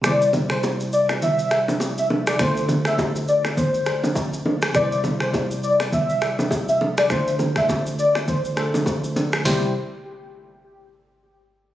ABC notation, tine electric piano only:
X:1
M:4/4
L:1/8
Q:"Swing 16ths" 1/4=102
K:C
V:1 name="Tine electric piano"
[C,G,Ec]8 | [D,A,Fc]8 | [C,G,EBc]8 | [D,A,Fc]4- [D,A,Fc] [D,A,Fc]3 |
[C,G,Ec] z6 z |]